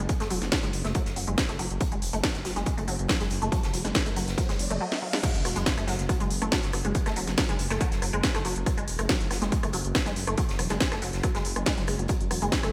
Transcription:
0.09 kick, closed hi-hat
0.20 F#1 A3, snare, closed hi-hat
0.30 E1 F#3, closed hi-hat, open hi-hat
0.42 F#1, snare, closed hi-hat
0.52 F#3, kick, snare, closed hi-hat
0.62 F#1 G#3, snare, closed hi-hat
0.73 F#1, closed hi-hat, open hi-hat
0.85 F#1 A3, snare, closed hi-hat
0.95 F#3, kick, closed hi-hat
1.06 F#1, snare, closed hi-hat
1.16 F#1 F#3, closed hi-hat, open hi-hat
1.28 F#1 G#3, closed hi-hat
1.38 kick, snare, closed hi-hat
1.49 F#1 A3, snare, closed hi-hat
1.59 F#1 F#3, closed hi-hat, open hi-hat
1.70 F#1, closed hi-hat
1.80 F#3, kick, closed hi-hat, riser
1.92 F#1 G#3, closed hi-hat
2.02 E1, closed hi-hat, open hi-hat
2.13 F#1 A3, closed hi-hat
2.23 F#3, kick, snare, closed hi-hat
2.35 F#1, snare, closed hi-hat
2.45 F#1 F#3, snare, closed hi-hat, open hi-hat
2.56 F#1 G#3, snare, closed hi-hat
2.66 kick, closed hi-hat
2.78 F#1 A3, closed hi-hat
2.88 F#1 F#3, closed hi-hat, open hi-hat
2.99 F#1, closed hi-hat
3.08 F#3, kick, snare, closed hi-hat
3.20 F#1 G#3, snare, closed hi-hat
3.30 F#1, closed hi-hat, open hi-hat
3.42 F#1 A3, closed hi-hat
3.52 F#3, kick, closed hi-hat
3.63 F#1, snare, closed hi-hat
3.73 E1 F#3, closed hi-hat, open hi-hat
3.85 F#1 G#3, snare, closed hi-hat
3.95 kick, snare, closed hi-hat
4.06 F#1 A3, closed hi-hat
4.16 F#1 F#3, closed hi-hat, open hi-hat
4.28 F#1, snare, closed hi-hat
4.38 F#3, kick, closed hi-hat
4.49 F#1 G#3, snare, closed hi-hat
4.59 F#1, closed hi-hat, open hi-hat
4.70 F#1 A3, closed hi-hat
4.81 F#3
4.92 snare
5.02 F#3
5.13 G#3, snare
5.23 F#3, kick, closed hi-hat, crash, impact
5.35 F#1, closed hi-hat
5.45 E1 F#3, cross-stick, closed hi-hat, open hi-hat
5.56 F#1 G#3, closed hi-hat
5.66 kick, snare, closed hi-hat
5.77 F#1 A3, cross-stick, snare, closed hi-hat
5.87 F#1 F#3, snare, closed hi-hat, open hi-hat
5.99 F#1, snare, closed hi-hat
6.09 F#3, kick, cross-stick, closed hi-hat
6.20 F#1 G#3, closed hi-hat
6.31 F#1, closed hi-hat, open hi-hat
6.42 F#1 A3, cross-stick, closed hi-hat
6.52 F#3, kick, snare, closed hi-hat
6.63 F#1, snare, closed hi-hat
6.73 F#1 F#3, cross-stick, closed hi-hat, open hi-hat
6.85 F#1 G#3, closed hi-hat
6.95 kick, closed hi-hat
7.06 F#1 A3, cross-stick, snare, closed hi-hat
7.16 E1 F#3, closed hi-hat, open hi-hat
7.27 F#1, snare, closed hi-hat
7.38 F#3, kick, cross-stick, snare, closed hi-hat
7.49 F#1 G#3, snare, closed hi-hat
7.59 F#1, closed hi-hat, open hi-hat
7.70 F#1 A3, cross-stick, snare, closed hi-hat
7.80 F#3, kick, closed hi-hat
7.92 F#1, snare, closed hi-hat
8.02 F#1 F#3, cross-stick, closed hi-hat, open hi-hat
8.13 F#1 G#3, closed hi-hat
8.23 kick, snare, closed hi-hat
8.35 F#1 A3, cross-stick, snare, closed hi-hat
8.45 F#1 F#3, closed hi-hat, open hi-hat
8.56 F#1, closed hi-hat
8.66 F#3, kick, cross-stick, closed hi-hat
8.77 F#1 G#3, closed hi-hat
8.88 E1, closed hi-hat, open hi-hat
8.98 F#1 A3, cross-stick, closed hi-hat
9.09 F#3, kick, snare, closed hi-hat
9.20 F#1, snare, closed hi-hat
9.31 F#1 F#3, cross-stick, snare, closed hi-hat, open hi-hat
9.42 F#1 G#3, snare, closed hi-hat
9.52 kick, closed hi-hat
9.63 F#1 A3, cross-stick, closed hi-hat
9.73 F#1 F#3, closed hi-hat, open hi-hat
9.85 F#1, closed hi-hat
9.95 F#3, kick, cross-stick, snare, closed hi-hat
10.06 F#1 G#3, snare, closed hi-hat
10.16 F#1, closed hi-hat, open hi-hat
10.27 F#1 A3, cross-stick, closed hi-hat
10.38 F#3, kick, closed hi-hat
10.49 F#1, snare, closed hi-hat
10.59 E1 F#3, cross-stick, closed hi-hat, open hi-hat
10.69 F#1 G#3, snare, closed hi-hat
10.80 kick, snare, closed hi-hat
10.92 F#1 A3, cross-stick, snare, closed hi-hat
11.02 F#1 F#3, closed hi-hat, open hi-hat
11.13 F#1, snare, closed hi-hat
11.23 F#3, kick, cross-stick, closed hi-hat
11.35 F#1 G#3, snare, closed hi-hat
11.45 F#1, closed hi-hat, open hi-hat
11.56 F#1 G#3, cross-stick, closed hi-hat
11.66 G#3, kick, snare, closed hi-hat
11.78 F#1 F#3, snare, closed hi-hat
11.87 F#1 G#3, cross-stick, closed hi-hat, open hi-hat
11.99 F#1 F#3, closed hi-hat
12.08 F#3, kick, closed hi-hat
12.21 F#1, closed hi-hat
12.31 E1 F#3, cross-stick, closed hi-hat, open hi-hat
12.42 F#1 G#3, closed hi-hat
12.52 kick, snare, closed hi-hat
12.63 F#1 A3, cross-stick, snare, closed hi-hat

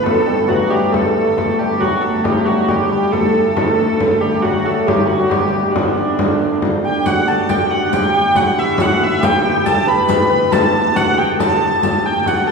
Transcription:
Already playing: D2 E3 B3
0.04 A3 A4, frame drum
0.26 G3
0.47 F#3 F#4, frame drum
0.70 G3 G4
0.92 A3 A4, frame drum
1.17 frame drum
1.37 A3, frame drum
1.59 G3 G4, frame drum
1.80 D2 F#3 F#4, frame drum
2.01 A3 A4
2.24 G3 G4, frame drum
2.46 F#3 F#4
2.68 G3 G4, frame drum
2.90 G3 G4
3.12 A3 A4, frame drum
3.56 A3 A4, frame drum
4.00 frame drum
4.21 G3 G4
4.42 F#3 F#4, frame drum
4.65 A3 A4
4.87 G3 G4, frame drum
5.07 F#3 F#4
5.29 G3 G4, frame drum
5.72 D3 D4, frame drum
5.98 frame drum
6.19 frame drum
6.62 frame drum
6.84 G4 G5
7.05 D2 F#4 F#5, riq, frame drum
7.27 A4 A5, riq
7.49 G4 G5, riq, frame drum
7.69 F#4 F#5
7.93 G4 G5, riq, frame drum
8.14 G4 G5
8.35 F#4 F#5, riq, frame drum
8.58 E4 E5, riq
8.78 F#4 F#5, riq, frame drum
9.00 E4 E5
9.20 G4, riq, frame drum
9.25 G5
9.43 G4 G5
9.64 A4 A5, riq, frame drum
9.87 B4 B5
10.09 riq, frame drum
10.29 B4
10.51 A4 A5, riq, frame drum
10.95 F#4 F#5, riq, frame drum
11.17 G4 G5, frame drum
11.39 A4 A5, riq, frame drum
11.62 frame drum
11.82 A4 A5, riq, frame drum
12.05 G5, frame drum
12.25 D2 F#4 F#5, riq, frame drum
12.46 A4 A5

